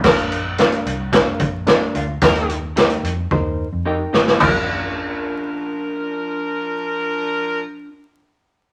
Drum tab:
CC |x---------------|----------------|x---------------|----------------|
HH |-xx-xxx-x-x-x-x-|xxx-xxx---------|----------------|----------------|
SD |o---o---o---o---|o---o---------oo|----------------|----------------|
FT |----------------|----------------|o---------------|----------------|
BD |o-------o-o-----|o-------o-------|o---------------|----------------|